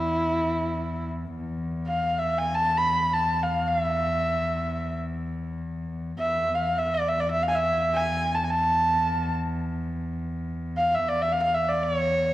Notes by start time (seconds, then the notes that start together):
Already playing: E2 E4
1.36 E2
1.87 F5
2.18 E5
2.38 G#5
2.55 A5
2.77 B5
3.13 A5
3.43 F5
3.68 F5
3.80 E5
6.19 E2 E5
6.55 F5
6.78 E5
6.94 D5
7.08 E5
7.20 D5
7.31 E5
7.42 F5
7.48 F5 G#5
7.55 E5
7.95 G#5
8.34 A5
8.44 G#5
8.50 A5
10.77 F5
10.94 E5
11.07 E2 D5
11.22 E5
11.32 F5
11.43 F5
11.54 E5
11.68 D5
11.83 D5
11.96 C#5